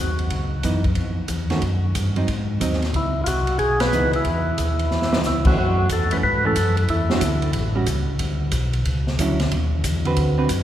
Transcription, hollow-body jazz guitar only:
0, 0, Header, 1, 2, 480
1, 0, Start_track
1, 0, Key_signature, 4, "minor"
1, 0, Tempo, 328587
1, 451, Time_signature, 4, 2, 24, 8
1, 8148, Key_signature, 3, "minor"
1, 15528, End_track
2, 0, Start_track
2, 0, Title_t, "Hollow-body jazz guitar"
2, 0, Program_c, 0, 26
2, 936, Note_on_c, 0, 59, 52
2, 937, Note_on_c, 0, 52, 50
2, 948, Note_on_c, 0, 63, 56
2, 1213, Note_off_c, 0, 59, 0
2, 1214, Note_off_c, 0, 52, 0
2, 1219, Note_off_c, 0, 63, 0
2, 2191, Note_on_c, 0, 51, 56
2, 2198, Note_on_c, 0, 57, 55
2, 2201, Note_on_c, 0, 66, 57
2, 2211, Note_on_c, 0, 61, 51
2, 2353, Note_off_c, 0, 51, 0
2, 2356, Note_off_c, 0, 57, 0
2, 2358, Note_off_c, 0, 66, 0
2, 2363, Note_off_c, 0, 61, 0
2, 3156, Note_on_c, 0, 54, 54
2, 3167, Note_on_c, 0, 60, 60
2, 3180, Note_on_c, 0, 63, 63
2, 3317, Note_off_c, 0, 54, 0
2, 3322, Note_off_c, 0, 60, 0
2, 3329, Note_off_c, 0, 63, 0
2, 3801, Note_on_c, 0, 54, 55
2, 3812, Note_on_c, 0, 60, 68
2, 3820, Note_on_c, 0, 63, 67
2, 4090, Note_off_c, 0, 54, 0
2, 4095, Note_off_c, 0, 60, 0
2, 4099, Note_off_c, 0, 63, 0
2, 5735, Note_on_c, 0, 52, 63
2, 5744, Note_on_c, 0, 59, 68
2, 5757, Note_on_c, 0, 63, 66
2, 6019, Note_off_c, 0, 52, 0
2, 6023, Note_off_c, 0, 59, 0
2, 6030, Note_off_c, 0, 63, 0
2, 7472, Note_on_c, 0, 52, 53
2, 7485, Note_on_c, 0, 59, 66
2, 7496, Note_on_c, 0, 63, 61
2, 7639, Note_off_c, 0, 52, 0
2, 7646, Note_off_c, 0, 59, 0
2, 7651, Note_off_c, 0, 63, 0
2, 7982, Note_on_c, 0, 52, 53
2, 7985, Note_on_c, 0, 57, 54
2, 7994, Note_on_c, 0, 61, 65
2, 8134, Note_off_c, 0, 52, 0
2, 8135, Note_off_c, 0, 57, 0
2, 8140, Note_off_c, 0, 61, 0
2, 8947, Note_on_c, 0, 52, 58
2, 8950, Note_on_c, 0, 57, 63
2, 8962, Note_on_c, 0, 61, 58
2, 9096, Note_off_c, 0, 52, 0
2, 9098, Note_off_c, 0, 57, 0
2, 9104, Note_off_c, 0, 61, 0
2, 9417, Note_on_c, 0, 52, 62
2, 9424, Note_on_c, 0, 57, 61
2, 9432, Note_on_c, 0, 61, 64
2, 9571, Note_off_c, 0, 52, 0
2, 9575, Note_off_c, 0, 57, 0
2, 9578, Note_off_c, 0, 61, 0
2, 10380, Note_on_c, 0, 52, 63
2, 10384, Note_on_c, 0, 55, 65
2, 10390, Note_on_c, 0, 62, 62
2, 10394, Note_on_c, 0, 66, 74
2, 10532, Note_off_c, 0, 52, 0
2, 10534, Note_off_c, 0, 55, 0
2, 10537, Note_off_c, 0, 62, 0
2, 10539, Note_off_c, 0, 66, 0
2, 11323, Note_on_c, 0, 55, 59
2, 11329, Note_on_c, 0, 61, 63
2, 11348, Note_on_c, 0, 66, 66
2, 11482, Note_off_c, 0, 55, 0
2, 11485, Note_off_c, 0, 61, 0
2, 11495, Note_off_c, 0, 66, 0
2, 13430, Note_on_c, 0, 50, 61
2, 13441, Note_on_c, 0, 54, 65
2, 13444, Note_on_c, 0, 64, 66
2, 13446, Note_on_c, 0, 61, 71
2, 13702, Note_off_c, 0, 50, 0
2, 13707, Note_off_c, 0, 54, 0
2, 13709, Note_off_c, 0, 64, 0
2, 13710, Note_off_c, 0, 61, 0
2, 14686, Note_on_c, 0, 50, 57
2, 14701, Note_on_c, 0, 60, 50
2, 14705, Note_on_c, 0, 66, 54
2, 14708, Note_on_c, 0, 71, 70
2, 15132, Note_off_c, 0, 50, 0
2, 15140, Note_off_c, 0, 60, 0
2, 15142, Note_off_c, 0, 66, 0
2, 15143, Note_off_c, 0, 71, 0
2, 15162, Note_on_c, 0, 50, 51
2, 15164, Note_on_c, 0, 60, 62
2, 15174, Note_on_c, 0, 71, 63
2, 15182, Note_on_c, 0, 66, 55
2, 15315, Note_off_c, 0, 50, 0
2, 15316, Note_off_c, 0, 60, 0
2, 15321, Note_off_c, 0, 71, 0
2, 15325, Note_off_c, 0, 66, 0
2, 15528, End_track
0, 0, End_of_file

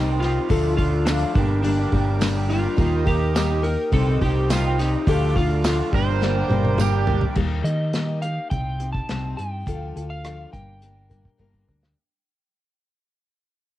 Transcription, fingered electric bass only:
0, 0, Header, 1, 2, 480
1, 0, Start_track
1, 0, Key_signature, -2, "minor"
1, 0, Tempo, 573614
1, 420, Time_signature, 4, 2, 24, 8
1, 11534, End_track
2, 0, Start_track
2, 0, Title_t, "Fingered electric bass"
2, 0, Program_c, 0, 33
2, 0, Note_on_c, 0, 36, 87
2, 315, Note_off_c, 0, 36, 0
2, 416, Note_on_c, 0, 38, 101
2, 1030, Note_off_c, 0, 38, 0
2, 1132, Note_on_c, 0, 31, 107
2, 1542, Note_off_c, 0, 31, 0
2, 1613, Note_on_c, 0, 31, 94
2, 2225, Note_off_c, 0, 31, 0
2, 2321, Note_on_c, 0, 39, 101
2, 3142, Note_off_c, 0, 39, 0
2, 3279, Note_on_c, 0, 36, 101
2, 3487, Note_off_c, 0, 36, 0
2, 3524, Note_on_c, 0, 36, 91
2, 4137, Note_off_c, 0, 36, 0
2, 4244, Note_on_c, 0, 38, 113
2, 4857, Note_off_c, 0, 38, 0
2, 4958, Note_on_c, 0, 31, 108
2, 5369, Note_off_c, 0, 31, 0
2, 5433, Note_on_c, 0, 31, 90
2, 6051, Note_off_c, 0, 31, 0
2, 6156, Note_on_c, 0, 39, 86
2, 6363, Note_off_c, 0, 39, 0
2, 6389, Note_on_c, 0, 51, 87
2, 7010, Note_off_c, 0, 51, 0
2, 7124, Note_on_c, 0, 36, 101
2, 7534, Note_off_c, 0, 36, 0
2, 7617, Note_on_c, 0, 36, 89
2, 7817, Note_off_c, 0, 36, 0
2, 7857, Note_on_c, 0, 43, 75
2, 8057, Note_off_c, 0, 43, 0
2, 8087, Note_on_c, 0, 38, 83
2, 8292, Note_off_c, 0, 38, 0
2, 8332, Note_on_c, 0, 38, 82
2, 8741, Note_off_c, 0, 38, 0
2, 8813, Note_on_c, 0, 31, 93
2, 9428, Note_off_c, 0, 31, 0
2, 9535, Note_on_c, 0, 31, 81
2, 9739, Note_off_c, 0, 31, 0
2, 9781, Note_on_c, 0, 38, 69
2, 9984, Note_off_c, 0, 38, 0
2, 11534, End_track
0, 0, End_of_file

